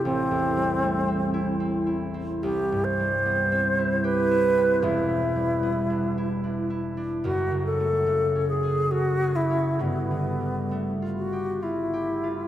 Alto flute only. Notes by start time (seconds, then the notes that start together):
0.05 C4
2.43 G4
2.84 C5
4.05 B4
4.83 E4
7.24 F#4
7.65 A4
8.49 G#4
8.91 F#4
9.36 E4
9.81 B3
11.17 F#4
11.63 E4